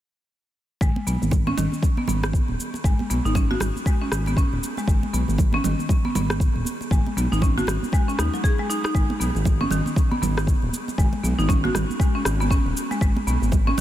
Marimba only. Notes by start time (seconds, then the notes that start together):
0.81 G#3
1.07 B3
1.47 C#4
1.57 D#3
1.98 B3
2.08 B3
2.85 G#3
3.10 B3
3.25 D#4
3.36 C#4
3.51 F#4
3.87 G#3
4.02 C#4
4.27 B3
4.37 C#4
4.78 G#3
4.88 G#3
5.14 B3
5.54 C#4
5.64 D#3
6.05 B3
6.15 B3
6.92 G#3
7.17 B3
7.32 D#4
7.42 C#4
7.58 F#4
7.93 G#3
8.08 C#4
8.19 D#4
8.34 F#3
8.44 G#4
8.59 G#3
8.70 D#4
8.84 D#4
8.95 G#3
9.20 B3
9.61 C#4
9.71 D#3
10.11 B3
10.22 B3
10.98 G#3
11.23 B3
11.39 D#4
11.49 C#4
11.64 F#4
12.00 G#3
12.15 C#4
12.40 B3
12.51 C#4
12.91 G#3
13.02 G#3
13.27 B3
13.67 C#4